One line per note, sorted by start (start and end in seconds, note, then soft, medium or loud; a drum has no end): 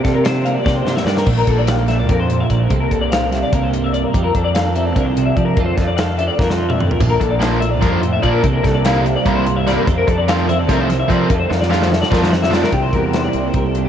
0.00 0.25 C3 medium
0.00 0.23 F3 medium
0.00 0.45 A#3 medium
0.00 0.24 D4 medium
0.00 0.14 A4 medium
0.04 0.56 C3 medium
0.04 0.64 G4 medium
0.04 kick medium
0.04 snare soft
0.04 closed hi-hat medium
0.14 0.24 A#4 medium
0.24 1.87 F3 medium
0.24 0.86 D4 medium
0.24 0.45 C5 medium
0.24 snare loud
0.24 closed hi-hat medium
0.45 1.06 A#3 medium
0.45 0.54 F5 medium
0.45 closed hi-hat medium
0.54 0.64 D5 medium
0.65 0.83 C3 loud
0.65 1.27 G4 medium
0.65 0.75 D5 medium
0.65 kick loud
0.65 snare medium
0.75 0.96 C5 medium
0.85 1.27 G2 medium
0.85 0.94 C3 medium
0.85 1.25 D4 medium
0.85 snare medium
0.96 1.05 E5 medium
0.96 snare medium
1.05 1.23 G2 medium
1.05 1.48 A#3 medium
1.05 1.16 D5 medium
1.05 snare medium
1.16 1.27 A#4 medium
1.16 snare medium
1.26 1.44 A#1 medium
1.26 2.27 A#2 medium
1.26 1.38 D4 medium
1.26 kick loud
1.26 crash loud
1.37 1.87 F4 medium
1.37 1.48 A#4 medium
1.47 2.09 A#1 medium
1.47 2.09 D4 medium
1.47 1.58 A4 medium
1.47 kick medium
1.47 closed hi-hat medium
1.58 1.68 D5 medium
1.67 1.77 G4 medium
1.67 1.88 F5 medium
1.67 snare loud
1.67 closed hi-hat medium
1.77 2.70 A4 soft
1.88 2.70 F3 medium
1.88 2.68 F4 medium
1.88 1.99 E5 medium
1.88 snare soft
1.88 closed hi-hat medium
1.99 2.09 D5 medium
2.09 2.43 F2 loud
2.09 2.70 D4 medium
2.09 2.20 A#4 medium
2.09 kick loud
2.09 closed hi-hat medium
2.20 2.40 C5 medium
2.28 2.67 A#2 medium
2.28 closed hi-hat medium
2.40 2.50 E5 medium
2.50 2.67 A#1 medium
2.50 2.60 D5 medium
2.50 kick medium
2.50 closed hi-hat medium
2.60 2.70 A#4 medium
2.69 2.88 C2 medium
2.69 4.13 C3 medium
2.69 3.30 G3 medium
2.69 2.90 A#3 medium
2.69 3.31 D4 medium
2.69 3.10 A4 medium
2.69 kick loud
2.69 closed hi-hat medium
2.80 2.91 A#4 medium
2.91 3.43 C2 medium
2.91 3.52 A#3 medium
2.91 3.01 A4 medium
2.91 kick medium
2.91 closed hi-hat medium
3.01 3.11 D5 medium
3.11 4.13 C5 medium
3.11 3.33 F5 medium
3.11 snare loud
3.11 closed hi-hat medium
3.31 4.11 G3 medium
3.31 4.34 D4 medium
3.31 3.43 E5 medium
3.31 snare soft
3.31 closed hi-hat medium
3.43 3.53 D5 medium
3.53 4.04 C2 medium
3.53 4.14 A#3 medium
3.53 3.62 A#4 medium
3.53 kick loud
3.53 closed hi-hat medium
3.62 3.84 C5 medium
3.73 4.14 G2 medium
3.73 closed hi-hat medium
3.84 3.93 E5 medium
3.93 4.04 D5 medium
3.93 closed hi-hat medium
4.04 4.14 A#4 medium
4.13 4.31 F2 loud
4.13 5.57 F3 medium
4.13 4.24 G4 medium
4.13 kick loud
4.13 closed hi-hat medium
4.24 4.55 A4 medium
4.24 4.35 A#4 medium
4.35 4.96 F2 medium
4.35 4.97 D4 medium
4.35 4.44 A4 medium
4.35 kick medium
4.35 closed hi-hat medium
4.44 4.54 D5 medium
4.55 4.75 A4 medium
4.55 4.75 F5 medium
4.55 snare loud
4.55 closed hi-hat medium
4.75 5.58 C4 medium
4.75 5.59 A4 medium
4.75 4.85 E5 medium
4.75 closed hi-hat medium
4.85 4.95 D5 medium
4.95 5.30 C2 medium
4.95 5.59 D4 medium
4.95 5.05 A#4 medium
4.95 kick loud
4.95 closed hi-hat medium
5.05 5.25 C5 medium
5.16 5.57 C3 medium
5.16 closed hi-hat medium
5.26 5.36 E5 medium
5.36 5.54 F3 medium
5.36 5.46 D5 medium
5.36 kick medium
5.36 closed hi-hat medium
5.45 5.56 A#4 medium
5.57 5.74 F2 medium
5.57 6.59 F3 medium
5.57 6.19 D4 medium
5.57 5.79 F4 medium
5.57 6.00 A4 medium
5.57 kick loud
5.57 closed hi-hat medium
5.66 5.76 C5 medium
5.76 6.29 F2 medium
5.76 6.40 F4 medium
5.76 5.87 A4 medium
5.76 kick medium
5.76 snare soft
5.76 closed hi-hat medium
5.87 5.97 D5 medium
5.97 6.20 A4 medium
5.97 6.18 F5 medium
5.97 snare loud
5.97 closed hi-hat medium
6.18 7.02 D4 medium
6.18 7.04 A4 medium
6.18 6.27 E5 medium
6.18 closed hi-hat medium
6.28 6.38 D5 medium
6.38 6.90 F2 medium
6.38 6.99 F4 medium
6.38 6.49 A#4 medium
6.38 kick loud
6.38 snare medium
6.49 6.69 C5 medium
6.49 snare medium
6.60 7.00 F3 medium
6.69 6.79 E5 medium
6.69 mid tom medium
6.79 6.89 D5 medium
6.79 mid tom medium
6.89 7.00 A#4 medium
6.89 floor tom medium
7.00 7.17 A#1 medium
7.00 7.82 A#2 medium
7.00 7.62 F3 medium
7.00 7.22 D4 medium
7.00 7.63 F4 medium
7.00 muted overdriven electric guitar stroke soft
7.00 kick loud
7.00 closed hi-hat medium
7.00 splash medium
7.05 7.43 A4 medium
7.10 7.20 A#4 medium
7.20 7.82 A#1 medium
7.20 8.45 D4 medium
7.20 7.30 A4 medium
7.20 muted overdriven electric guitar stroke soft
7.20 kick medium
7.20 closed hi-hat medium
7.30 7.40 D5 medium
7.40 7.61 A#2 medium
7.40 7.61 F3 medium
7.40 7.61 A#3 medium
7.40 7.60 D4 medium
7.40 8.46 A4 medium
7.40 7.60 F5 medium
7.40 snare loud
7.40 closed hi-hat loud
7.60 8.44 F3 medium
7.60 8.42 F4 medium
7.60 7.70 E5 medium
7.60 muted overdriven electric guitar stroke medium
7.60 closed hi-hat medium
7.70 7.80 D5 medium
7.80 8.16 F2 medium
7.80 8.03 G2 medium
7.80 8.02 A#2 medium
7.80 8.02 F3 medium
7.80 8.01 A#3 medium
7.80 8.01 D4 medium
7.80 7.91 A#4 medium
7.80 kick loud
7.80 snare soft
7.80 closed hi-hat medium
7.91 8.12 C5 medium
8.02 8.23 A2 medium
8.02 muted overdriven electric guitar stroke soft
8.02 closed hi-hat medium
8.13 8.22 E5 medium
8.22 8.43 A#2 medium
8.22 8.40 A#2 medium
8.22 8.43 F3 medium
8.22 8.43 A#3 medium
8.22 8.44 D4 medium
8.22 8.33 D5 medium
8.22 kick medium
8.22 closed hi-hat medium
8.32 8.43 A#4 medium
8.43 8.61 C2 medium
8.43 9.86 C3 medium
8.43 9.04 G3 medium
8.43 8.64 A#3 medium
8.43 9.05 D4 medium
8.43 8.86 A4 medium
8.43 muted overdriven electric guitar stroke soft
8.43 kick loud
8.43 closed hi-hat medium
8.53 8.64 A#4 medium
8.64 9.15 C2 medium
8.64 9.25 A#3 medium
8.64 8.74 A4 medium
8.64 muted overdriven electric guitar stroke medium
8.64 kick medium
8.64 snare soft
8.64 closed hi-hat medium
8.74 8.84 D5 medium
8.85 9.05 C3 medium
8.85 9.05 G3 medium
8.85 9.05 A#3 medium
8.85 9.05 E4 medium
8.85 9.88 C5 medium
8.85 9.05 F5 medium
8.85 snare loud
8.85 closed hi-hat medium
9.05 9.84 G3 medium
9.05 9.88 D4 soft
9.05 9.15 E5 medium
9.05 muted overdriven electric guitar stroke soft
9.05 closed hi-hat medium
9.16 9.26 D5 medium
9.25 9.77 C2 loud
9.25 9.46 C3 medium
9.25 9.46 G3 medium
9.25 9.87 A#3 medium
9.25 9.45 A#3 medium
9.25 9.45 E4 medium
9.25 9.35 A#4 medium
9.25 kick loud
9.25 closed hi-hat medium
9.36 9.56 C5 medium
9.46 9.86 G2 medium
9.46 muted overdriven electric guitar stroke medium
9.46 closed hi-hat medium
9.56 9.66 E5 medium
9.67 9.87 C3 medium
9.67 9.87 G3 medium
9.67 9.87 A#3 medium
9.67 9.87 E4 medium
9.67 9.77 D5 medium
9.67 snare soft
9.67 closed hi-hat medium
9.77 9.87 A#4 medium
9.87 10.04 F2 medium
9.87 11.29 F3 medium
9.87 10.48 C4 medium
9.87 10.07 D4 medium
9.87 10.28 A4 medium
9.87 muted overdriven electric guitar stroke medium
9.87 kick loud
9.87 closed hi-hat medium
9.98 10.08 A#4 medium
10.07 10.69 F2 medium
10.07 10.68 D4 medium
10.07 10.18 A4 medium
10.07 muted overdriven electric guitar stroke medium
10.07 kick medium
10.07 closed hi-hat medium
10.18 10.28 D5 medium
10.28 10.48 F3 medium
10.28 10.48 A3 medium
10.28 10.47 C4 medium
10.28 10.47 F4 medium
10.28 10.50 A4 medium
10.28 10.48 F5 medium
10.28 snare loud
10.28 closed hi-hat loud
10.48 11.31 C4 medium
10.48 11.28 A4 medium
10.48 10.58 E5 medium
10.48 muted overdriven electric guitar stroke medium
10.48 closed hi-hat medium
10.58 10.69 D5 medium
10.69 11.03 C2 loud
10.69 10.89 F3 medium
10.69 10.89 A3 medium
10.69 10.89 C4 medium
10.69 11.30 D4 medium
10.69 10.88 F4 medium
10.69 10.79 A#4 medium
10.69 kick loud
10.69 snare soft
10.69 closed hi-hat loud
10.79 10.99 C5 medium
10.89 11.30 C3 medium
10.89 muted overdriven electric guitar stroke soft
10.89 snare soft
10.89 closed hi-hat medium
10.99 11.10 E5 medium
11.08 11.28 F3 medium
11.08 11.26 F3 medium
11.08 11.29 A3 medium
11.08 11.29 C4 medium
11.08 11.30 F4 medium
11.08 11.20 D5 medium
11.08 kick medium
11.08 closed hi-hat medium
11.20 11.30 A#4 medium
11.30 11.47 F2 medium
11.30 12.32 F3 medium
11.30 11.90 D4 medium
11.30 11.51 F4 medium
11.30 11.71 A4 medium
11.30 muted overdriven electric guitar stroke soft
11.30 kick loud
11.30 closed hi-hat medium
11.40 11.50 C5 medium
11.50 12.01 F2 medium
11.50 12.11 F4 medium
11.50 11.60 A4 medium
11.50 muted overdriven electric guitar stroke medium
11.50 snare medium
11.61 11.70 D5 medium
11.61 snare medium
11.70 11.91 F3 medium
11.70 11.89 A3 loud
11.70 11.89 D4 medium
11.70 11.88 F4 loud
11.70 11.80 G4 medium
11.70 11.91 F5 medium
11.70 snare medium
11.80 11.91 A4 medium
11.80 snare medium
11.90 12.70 D4 medium
11.90 12.71 A4 medium
11.90 12.01 E5 medium
11.90 muted overdriven electric guitar stroke medium
11.90 snare medium
12.01 12.12 D5 medium
12.01 snare medium
12.11 12.63 F2 loud
12.11 12.32 F3 medium
12.11 12.31 A3 loud
12.11 12.30 D4 medium
12.11 12.30 F4 medium
12.11 12.71 F4 medium
12.11 12.22 A#4 medium
12.11 kick loud
12.11 snare medium
12.22 12.42 C5 medium
12.22 snare medium
12.31 12.73 F3 medium
12.31 muted overdriven electric guitar stroke soft
12.31 snare loud
12.42 12.53 E5 medium
12.42 snare medium
12.50 12.72 F3 medium
12.50 12.72 A3 medium
12.50 12.73 D4 loud
12.50 12.72 F4 medium
12.50 12.63 D5 medium
12.50 snare loud
12.63 12.73 A#4 medium
12.63 snare medium
12.72 12.90 C2 medium
12.72 13.89 C3 medium
12.72 12.83 G4 medium
12.72 kick medium
12.72 closed hi-hat medium
12.83 12.93 C5 medium
12.93 13.27 E2 medium
12.93 13.54 G3 medium
12.93 13.03 A#4 medium
12.93 kick medium
12.93 closed hi-hat medium
13.04 13.14 A#4 medium
13.13 13.75 E4 medium
13.13 13.24 C5 medium
13.13 snare loud
13.13 closed hi-hat medium
13.24 13.45 D5 medium
13.33 13.51 C2 medium
13.33 13.89 A#3 medium
13.33 closed hi-hat medium
13.45 13.55 C5 medium
13.54 13.89 C2 medium
13.54 13.89 G3 medium
13.54 13.65 A#4 medium
13.54 kick medium
13.54 closed hi-hat medium
13.65 13.86 A4 medium
13.75 13.85 D4 medium
13.75 closed hi-hat medium
13.85 13.89 E4 soft
13.85 13.89 G4 medium